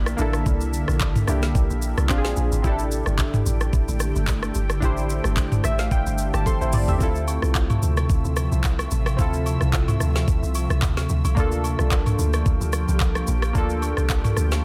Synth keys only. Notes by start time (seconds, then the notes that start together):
Already playing: A#3 D4 E4 G4
0.17 A#3 D4 E4
0.22 A4
1.27 A#3 D4 E4 G4
2.09 C4 D4 F4 G4
2.18 G#4
2.62 C4 E4 G4
2.67 D4 A4
4.80 D4 E4 G4
4.85 C5
5.65 E5
5.79 F5
5.92 G5
6.34 G4 A5
6.46 C4 A4 C6
6.61 E4 C5
6.74 D5
6.89 G4 E5
6.99 C4 E4 F4
7.03 A4
9.17 C4 E4 F4
9.22 A4
11.35 A#3 D4 F4
11.40 A4
13.53 A#3 D4 F4
13.58 A4